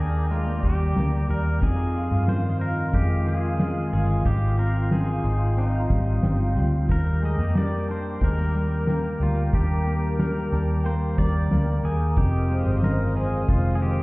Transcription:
Already playing: D#2 A#3 D4 D5 G5 A#5
0.00 G#4
0.30 G#3 F4, closed hi-hat
0.47 A#3
0.63 D#2 G3 G4, kick, closed hi-hat
0.96 D2 A#3, snare, closed hi-hat
1.29 D#2 G3 A#4, closed hi-hat
1.61 F2 D#4 F4 G#4 F5 C6, kick, closed hi-hat
1.95 closed hi-hat
2.11 G2
2.28 D#3 C5, snare, closed hi-hat
2.60 D#4 A#4, closed hi-hat
2.93 F2 G#3 G4, kick, closed hi-hat
3.26 D#3 G#4, closed hi-hat
3.59 G#3, snare, closed hi-hat
3.92 G1 D#3 G#4, closed hi-hat
4.25 G#1 D#4 G4 G5, kick, closed hi-hat
4.58 C4 A#4, closed hi-hat
4.91 G#4, snare, closed hi-hat
5.24 G#1 D#4, closed hi-hat
5.57 C4 D#4, closed hi-hat
5.74 F5
5.80 A#5
5.90 G#1 G3, kick, closed hi-hat
6.23 G1 C4, snare, closed hi-hat
6.55 D2 G3, closed hi-hat
6.89 D#2 A#4 D6, kick, closed hi-hat
7.22 G#3 D#5, closed hi-hat
7.38 F2 A#3
7.55 G3 D5, snare, closed hi-hat
7.88 D4 C5, closed hi-hat
8.21 D#2 G#3 A#4, kick, closed hi-hat
8.38 A#3
8.55 G3, closed hi-hat
8.87 A#3, snare, closed hi-hat
9.20 D2 G3 F4, closed hi-hat
9.53 D#2 D4 G4, kick, closed hi-hat
9.86 A#3, closed hi-hat
10.19 G3 A#4, snare, closed hi-hat
10.52 D#2 D4, closed hi-hat
10.83 A#3 C5 G5, closed hi-hat
11.18 D#2 G3 D5, kick, closed hi-hat
11.51 D2 A#3, snare, closed hi-hat
11.83 D#2 G#4, closed hi-hat
12.17 F1 F2 D#4 G4 C5 D#5 F5 D#6, kick, closed hi-hat
12.50 G#3, closed hi-hat
12.66 G1
12.82 D#3 A#4, snare, closed hi-hat
13.16 D#4 G#4, closed hi-hat
13.49 F1 G#3 F4, kick, closed hi-hat
13.75 G#4
13.82 D#3 G4, closed hi-hat

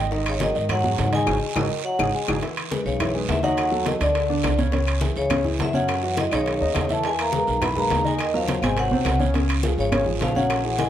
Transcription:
Already playing: G#1
0.11 D#3 D#4 D#5, high bongo, high conga, long guiro
0.26 C#3 C#5, high conga, high timbale, claves
0.40 D#3 F#3 F#4 G#4 D#5, high bongo, high conga, high timbale, low timbale, short guiro
0.55 G#2 D#3 D#4 D#5, short guiro
0.69 F#3 F#5, high bongo, high conga, low conga, high timbale, long guiro, claves
0.84 F#3 F#4 G#4, high conga, low conga
0.98 G#2, high bongo, low bongo, high conga, high timbale, low timbale, short guiro
1.12 D#3 G#3 D#4 D#5 G#5, high bongo, high conga, high timbale, short guiro
1.26 G#1 D#4 F#4 G#4, low bongo, high conga, high timbale, long guiro, claves
1.55 G#1 D#3 D#4 F#4 G#4 D#5, low bongo, high conga, high timbale, long guiro, claves
1.85 F#3 F#5
1.99 G#1 D#4 F#4 G#4, low bongo, high conga, high timbale, long guiro, claves
2.13 G#3 G#5
2.28 G#1 D#4 F#4 G#4, low bongo, high conga, high timbale, long guiro, claves
2.42 E3 E4 E5, high bongo, high timbale, long guiro
2.57 high conga, high timbale, claves
2.71 G#3 G#4 B4, high bongo, high conga, low timbale, short guiro
2.86 B1 C#3 C#5, high conga, short guiro
3.00 E3 E4 E5, high bongo, high conga, low conga, high timbale, long guiro, claves
3.14 G#3 G#4 B4, high conga
3.29 D#2 E3 E5, high bongo, low bongo, high conga, high timbale, low timbale, short guiro
3.43 D#3 F#3 D#4 D#5 F#5, high conga, short guiro
3.57 high bongo, high conga, high timbale, long guiro, claves
3.71 F#3 F#4 A4, high bongo, high conga
3.86 D#3 F#3 F#4 A4 D#5, high bongo, high conga, high timbale, low timbale, short guiro
4.00 D2 D3 D4 D5, high bongo, high timbale, short guiro, claves
4.15 high bongo, high conga, high timbale, long guiro
4.29 D3 D4 D5, high bongo, high conga
4.44 C#2, high bongo, low bongo, high conga, high timbale, low timbale, short guiro, claves
4.58 C#3 C#4 C#5, high conga, short guiro
4.72 C#3 C#4 C#5, high bongo, high conga, high timbale, long guiro
4.87 high conga, high timbale, claves
5.01 E3 E4 G#4, high bongo, high conga, low timbale, short guiro
5.16 C#2 C#3 C#5, short guiro
5.30 C#3 C#4 C#5, high bongo, high conga, low conga, high timbale, long guiro, claves
5.44 E3 E4 G#4, high conga, low conga
5.59 F#2 E3 E5, high bongo, low bongo, high conga, high timbale, low timbale, short guiro
5.73 C#3 F#3 C#4 C#5 F#5, high conga, short guiro
5.88 high bongo, high conga, high timbale, long guiro, claves
6.03 E3 E4 F#4, high bongo, high conga
6.17 D#3 E3 E4 F#4 D#5, high bongo, high conga, high timbale, low timbale, short guiro
6.31 B1 C#3 D#3 D#4 C#5 D#5, high bongo, high timbale, short guiro, claves
6.46 high bongo, high conga, high timbale, long guiro
6.60 D#2 D#3 D#4 D#5, high bongo, high conga
6.75 E2, high bongo, low bongo, high conga, high timbale, low timbale, short guiro, claves
6.89 E3 A3 E4 E5, high conga, short guiro
6.93 A5
7.04 E3 G#3 E4 G#5, high bongo, high conga, high timbale, long guiro
7.18 A#3 A#5, high conga, high timbale, claves
7.32 G#3 G#4 B4, high bongo, high conga, low timbale, short guiro
7.47 B1, high conga, short guiro
7.61 E3 B3 E4 E5 B5, high bongo, high conga, low conga, high timbale, long guiro, claves
7.76 G#3 A#3 G#4 B4 A#5, high conga, low conga
7.90 D#2, high bongo, low bongo, high conga, high timbale, low timbale, short guiro
8.04 D#3 G#3 D#4 D#5 G#5, high conga, short guiro
8.19 D#3 D#5, high bongo, high conga, high timbale, long guiro, claves
8.33 F3 F#3 F#4 A#4 F5, high bongo, high conga
8.48 F#3 F#4 A#4, high bongo, high conga, high timbale, low timbale, short guiro
8.62 G#1 C3 G#3 C4 C5 G#5, high bongo, high timbale, short guiro, claves
8.77 F#3 F#5, high bongo, high conga, high timbale, long guiro
8.91 B1 C3 C4 C5, high bongo, high conga
9.05 C#2, high bongo, low bongo, high conga, high timbale, low timbale, short guiro, claves
9.19 C#3 C#4 C#5, high conga, short guiro
9.34 C#3 C#4 C#5, high bongo, high conga, high timbale, long guiro
9.49 high conga, high timbale, claves
9.63 F3 F4 G#4, high bongo, high conga, low timbale, short guiro
9.78 G#1 C#3 C#5, high conga, short guiro
9.92 C#3 C#4 C#5, high bongo, high conga, low conga, high timbale, long guiro, claves
10.05 F3 F4 G#4, high conga, low conga
10.20 A#1 F3 F5, high bongo, low bongo, high conga, high timbale, low timbale, short guiro
10.35 C#3 F#3 C#4 C#5 F#5, high conga, short guiro
10.50 high bongo, high conga, high timbale, long guiro, claves
10.64 E3 E4 G#4, high bongo, high conga
10.79 E3 G#3 E4 G#4 G#5, high bongo, high conga, high timbale, low timbale, short guiro

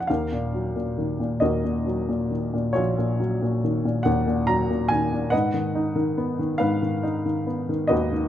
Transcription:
Already playing: F3 D#4 G#4 F5 G#5
0.00 F#5
0.07 D#2 A#4 F5
0.32 A#2
0.54 F#3
0.76 A#2
0.98 D#3
1.20 A#2
1.40 D#2 F#4 A#4 D#5
1.64 A#2
1.87 F#3
2.09 A#2
2.31 D#3
2.53 A#2
2.73 A#1 F4 F#4 C#5
2.98 A#2
3.20 F#3
3.42 A#2
3.64 D#3
3.85 A#2
4.03 D#2 F#5
4.27 A#2
4.47 F#3 A#5
4.70 A#2
4.88 D#3 G#5
5.13 A#2
5.30 G#2 B4 D#5 F#5
5.54 D#3
5.75 D#4
5.96 D#3
6.17 B3
6.39 D#3
6.58 G#2 B4 F5
6.82 D#3
7.03 D#4
7.25 D#3
7.47 B3
7.69 D#3
7.87 D#2 F#4 B4 D#5
8.12 D#3

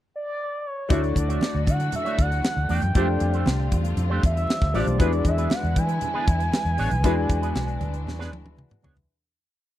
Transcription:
0.16 D5
0.66 C#5
0.89 D2 D3 F#3 A3 D4 E4 F#4 C#5 D5, kick, closed hi-hat
1.03 muted clean electric guitar stroke, closed hi-hat
1.11 C#5
1.16 D2 D5, muted clean electric guitar stroke, kick, closed hi-hat, muted conga
1.28 A3 D4 F#4 C#5, closed hi-hat
1.41 muted clean electric guitar stroke, snare, high conga
1.54 D2, muted clean electric guitar stroke
1.67 D3 F#5, kick, closed hi-hat, muted conga, low conga
1.80 muted clean electric guitar stroke, closed hi-hat
1.92 muted clean electric guitar stroke, closed hi-hat, low conga
1.96 E5
2.05 A3 D4 F#4 C#5, closed hi-hat
2.18 D2 F#5, muted clean electric guitar stroke, kick, closed hi-hat
2.31 muted clean electric guitar stroke, closed hi-hat
2.43 snare, high conga
2.56 D2, muted clean electric guitar stroke
2.69 E2 A3 D4 F#4 D5, open hi-hat
2.74 G5
2.82 F#2, muted clean electric guitar stroke, closed hi-hat, high conga
2.94 F2 G3 A3 C4 D4 F4 G4 C5, kick, closed hi-hat
3.01 A3
3.08 muted clean electric guitar stroke
3.20 F2, muted clean electric guitar stroke, closed hi-hat, muted conga
3.33 A3 D4 G4 C5, closed hi-hat
3.46 C2, muted clean electric guitar stroke, snare, high conga
3.59 muted clean electric guitar stroke
3.72 E2, kick, closed hi-hat, muted conga, low conga
3.84 muted clean electric guitar stroke, closed hi-hat
3.97 F2, muted clean electric guitar stroke, closed hi-hat, low conga
4.10 A3 D4 G4 C5
4.23 E2 E5, muted clean electric guitar stroke, kick, closed hi-hat
4.36 muted clean electric guitar stroke, closed hi-hat
4.47 snare, high conga
4.61 D2, muted clean electric guitar stroke, kick, snare
4.74 A1 A3 D4 F4 G4 C5 D5, open hi-hat
4.86 B1, muted clean electric guitar stroke, closed hi-hat, high conga
4.98 E2 E3 G#3 B3 D4 E4 F#4 G#4 B4, kick, closed hi-hat
5.13 muted clean electric guitar stroke, closed hi-hat
5.25 E2 E5, muted clean electric guitar stroke, kick, closed hi-hat, muted conga
5.37 B3 D4 G#4 B4, closed hi-hat
5.50 F#5, muted clean electric guitar stroke, snare, high conga
5.63 E2, muted clean electric guitar stroke, closed hi-hat
5.76 E3 G#5, kick, closed hi-hat, muted conga, low conga
5.89 muted clean electric guitar stroke, closed hi-hat
6.01 muted clean electric guitar stroke, closed hi-hat, low conga
6.14 B3 D4 G#4 B4
6.27 E2, muted clean electric guitar stroke, kick, closed hi-hat
6.40 muted clean electric guitar stroke, closed hi-hat
6.52 snare, high conga
6.65 E2, muted clean electric guitar stroke, closed hi-hat
6.77 A1 B3 D4 G#4 C#5, open hi-hat
6.91 B1, muted clean electric guitar stroke, closed hi-hat, high conga
7.03 E2 G#3 B3 D4 E4 F#4 G#4 B4, kick, closed hi-hat
7.16 muted clean electric guitar stroke
7.29 E2, muted clean electric guitar stroke, kick, closed hi-hat, muted conga
7.42 B3 D4 G#4 B4, closed hi-hat
7.55 B1, snare, high conga
7.67 muted clean electric guitar stroke, closed hi-hat
7.81 D2, closed hi-hat, muted conga, low conga
7.93 muted clean electric guitar stroke, closed hi-hat
8.06 E2, muted clean electric guitar stroke, snare, low conga
8.19 B3 D4 G#4 B4, snare
8.32 D2, muted clean electric guitar stroke, high tom
8.45 muted clean electric guitar stroke, high tom
8.57 mid tom, high conga
8.70 muted clean electric guitar stroke, mid tom
8.82 C#2 B3 D4 G#4 C#5, floor tom
8.96 floor tom, high conga

